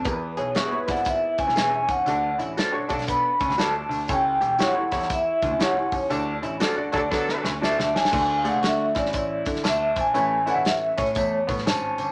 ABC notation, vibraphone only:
X:1
M:4/4
L:1/16
Q:"Swing" 1/4=119
K:Dlyd
V:1 name="Vibraphone"
B2 c2 B2 f2 e2 g2 g2 f2- | f2 z6 b4 a4 | =g4 f4 e4 f2 c2 | z12 e2 g2- |
g3/2 =f/2 ^f2 e2 d4 z2 e2 g2- | g2 f2 e2 c4 z2 a4 |]